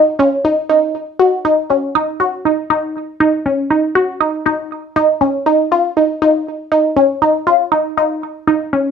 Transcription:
Already playing: D#4
0.19 C#4
0.45 D#4
0.69 D#4
1.19 F#4
1.45 D#4
1.70 C#4
1.95 D#4
2.20 F#4
2.45 D#4
2.70 D#4
3.20 D#4
3.46 C#4
3.70 D#4
3.95 F#4
4.21 D#4
4.46 D#4
4.96 D#4
5.21 C#4
5.46 D#4
5.72 F4
5.97 D#4
6.22 D#4
6.72 D#4
6.96 C#4
7.22 D#4
7.47 F4
7.72 D#4
7.98 D#4
8.47 D#4
8.73 C#4

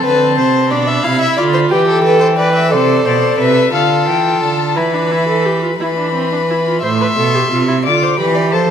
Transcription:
Already playing: C4 A5
0.04 D3 B4
0.38 C3 C5
0.70 B2 D4 D5 B5
0.87 E5
1.04 C3 E4 F5
1.21 E5
1.37 D3 F4 D5
1.53 C5
1.70 E3 G4 B4 G5
1.88 A4
2.04 A4 B4
2.20 C5
2.37 B4 D5
2.55 E5
2.71 C3 A4 C5 D5
3.05 B2 C5 D5
3.38 C3 B4 E5
3.73 D3 F4 A4 F5
4.08 E3 G5
4.42 D3 A5
4.76 E3 E4 B4 B5
4.94 D4
5.11 E4
5.28 A4
5.46 G4
5.63 F4
5.80 E3 E4 B4 B5
5.98 D4
6.14 C4
6.32 D4
6.50 E4
6.67 F4
6.83 A2 C5 E5 C6
7.01 B4
7.18 B2 A4
7.35 G4
7.52 C3 F4
7.68 E4
7.85 D3 F4 D5 D6
8.03 C5
8.19 E3 G4 B4 B5
8.35 D5
8.52 F3 A4 C5 A5

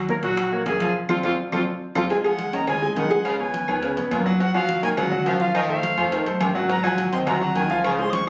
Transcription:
Already playing: D#2
0.09 A#3 A#4 C#5, high bongo, high conga
0.23 A#1 F#3 F#4 F#5, high bongo, high conga, high timbale
0.37 high bongo, high conga, high timbale, claves
0.52 A#3 A#4 C#5, high conga
0.66 F1 G#4, high bongo, low bongo, high conga, high timbale, low timbale
0.80 F3 F4 F5, high bongo, high conga, high timbale
1.09 F2 C4 F4 A4, low bongo, high conga, high timbale, claves
1.23 F2 C4 F4 A4, low bongo, high conga, high timbale, claves
1.52 F2 C4 F4 A4, low bongo, high conga, high timbale, claves
1.95 F2 C4 F4 A4, low bongo, high conga, high timbale, claves
2.10 G#3 G#4 G#5, cowbell, high conga, low agogo
2.24 F3 G#3 G#4 F#5 G#5, high conga, low agogo, claves
2.39 cowbell, high conga, low timbale
2.53 D#2 D#3 C#4 C#5 D#5 A#5, cowbell, low agogo
2.67 C#3 G#3 G#4 G#5, cowbell, high conga, low conga, low agogo, claves
2.82 G#3 G#4 G#5, high conga
2.96 C#2 D#3 F#5, cowbell, high conga, low timbale, low agogo
3.10 G#3 G#4 G#5, high conga
3.25 C#3 F5, cowbell, low agogo, claves
3.39 B3 B4 C#5 G#5, high conga, low agogo
3.54 cowbell, high conga, low timbale
3.68 C#2 D#3 B3 B4 C#5, high conga, low agogo, claves
3.82 C#3, cowbell, high conga, low agogo
3.97 F2 B3 B4 C#5, cowbell, high conga
4.11 F#2 A#2, cowbell, high conga, low timbale, low agogo, claves
4.26 F#3 F#4 F#5
4.40 F#3 F#4 F#5, cowbell, high conga, low agogo
4.54 F3 F#3 F#4 F5 F#5, high conga, low agogo, claves
4.69 cowbell, high conga, low timbale
4.82 C#2 D#3 A#3 A#4 C#5 G#5, cowbell, low agogo
4.97 C#3 F#3 F#4 F#5, cowbell, high conga, low conga, low agogo, claves
5.12 F#3 F#4 F#5, high conga, low conga
5.25 F2 F3 F5, cowbell, high conga, low timbale, low agogo
5.40 F3 F4 F5, high conga
5.54 D#3 D#5, cowbell, high conga, low agogo, claves
5.69 A3 A4 C5 F5, high conga, low agogo
5.83 cowbell, high conga, low timbale
5.97 F2 F3 A3 A4 C5, high conga, low agogo, claves
6.12 D#3, cowbell, high conga, low agogo
6.26 F#2 A3 A4 C5, cowbell, high conga
6.40 G#2 C3, cowbell, high conga, low timbale, low agogo, claves
6.55 F#3 F#4 F#5
6.69 F#3 F#4 F#5 A#5, cowbell, high conga, low agogo
6.83 F3 F#3 F#4 F#5 G#5, high conga, low agogo, claves
6.98 cowbell, high conga, low timbale
7.12 D#2 D#3 C4 C5 D#5 C6, cowbell, low agogo
7.27 C3 F#3 F#4 F#5 A#5, cowbell, high conga, low conga, low agogo, claves
7.41 F#3 F#4 F#5, high conga
7.55 C#2 D#3 G#5, cowbell, high conga, low timbale, low agogo
7.70 F3 F4 F5, high conga
7.84 C#3 C#6, cowbell, high conga, low agogo, claves
7.99 G#3 G#4 C5 C6, high conga, low agogo
8.10 C#6 D#6, cowbell, high conga, low timbale

